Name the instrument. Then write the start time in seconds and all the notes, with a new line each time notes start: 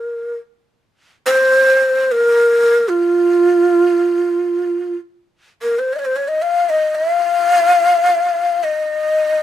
ney
Already playing: A#4
1.26 C5
2.12 A#4
2.88 F4
5.62 A#4
5.79 C5
5.93 C#5 D#5
5.98 C#5
6.05 C5
6.16 C#5
6.28 D#5
6.42 F5
6.70 D#5
6.95 F5
8.64 D#5